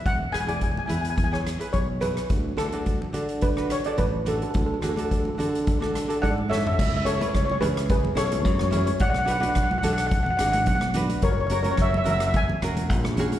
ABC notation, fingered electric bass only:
X:1
M:4/4
L:1/8
Q:"Swing 16ths" 1/4=108
K:Dlyd
V:1 name="Fingered electric bass" clef=bass
E,,, E,,,2 E,,3 B,,,2 | D,, D,,2 D,3 A,,,2 | D,, D,,2 D,3 G,,2 | C,,2 C,, C,,2 B,,, F,,2 |
B,,,2 B,,, B,,,2 G,,, B,,,2 | F,,,2 F,,, F,,,2 E,,, ^A,,,2 |]